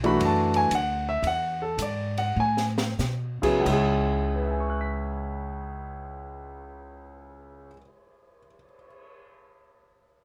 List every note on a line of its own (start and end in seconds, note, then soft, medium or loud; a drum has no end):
0.00 0.18 B1 medium
0.00 0.68 E3 medium
0.00 0.68 D4 medium
0.00 ride soft
0.04 0.68 A3 medium
0.04 0.68 F#4 medium
0.04 0.21 B5 medium
0.20 0.69 F#2 medium
0.20 ride medium
0.25 0.56 A5 medium
0.54 0.72 G#5 medium
0.54 ride soft
0.71 1.22 D2 medium
0.71 hi-hat pedal soft
0.71 ride medium
0.75 1.07 F#5 medium
1.09 1.24 E5 medium
1.22 1.77 E2 medium
1.22 ride medium
1.27 1.61 F#5 medium
1.62 1.79 A4 medium
1.78 2.35 G#2 medium
1.78 hi-hat pedal medium
1.78 ride medium
1.82 2.18 D5 medium
2.17 2.37 F#5 medium
2.17 ride soft
2.36 2.97 A2 medium
2.36 2.64 G#5 medium
2.57 snare medium
2.78 snare medium
2.99 3.40 B2 medium
2.99 snare soft
2.99 hi-hat pedal medium
3.42 3.62 C#3 medium
3.42 3.63 F#3 medium
3.42 3.63 B3 medium
3.42 3.63 E4 medium
3.42 3.63 G#4 medium
3.42 muted upright bass stroke soft
3.42 kick medium
3.42 crash medium
3.60 7.67 C#2 medium
3.60 7.71 C#3 medium
3.66 7.69 C#2 medium
3.66 7.73 G#3 medium
3.66 7.76 E4 medium
3.66 kick soft
3.66 crash medium
3.72 7.79 G#4 medium
4.12 cymbal swell soft
4.35 8.39 B4 soft
4.43 8.46 E5 soft
4.51 8.55 G#5 soft
4.60 8.64 C#6 soft
4.70 8.73 F#6 soft
4.81 8.84 B6 soft